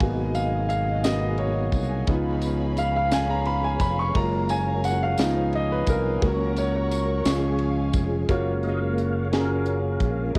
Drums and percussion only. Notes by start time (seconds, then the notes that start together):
0.00 kick, ride
0.35 ride, tambourine
0.70 ride, tambourine
1.04 snare, ride, tambourine
1.38 ride
1.72 kick, ride, tambourine
2.07 kick, ride
2.42 ride, tambourine
2.77 ride, tambourine
3.12 snare, ride, tambourine
3.46 ride
3.80 kick, ride, tambourine
4.15 kick, ride
4.49 ride, tambourine
4.84 ride, tambourine
5.18 snare, ride, tambourine
5.53 ride
5.86 kick, ride, tambourine
6.22 kick, ride
6.56 ride, tambourine
6.91 ride, tambourine
7.25 snare, ride, tambourine
7.58 ride
7.93 kick, ride, tambourine
8.29 kick, closed hi-hat
8.63 closed hi-hat
8.98 closed hi-hat
9.33 snare, closed hi-hat
9.66 closed hi-hat
10.01 kick, closed hi-hat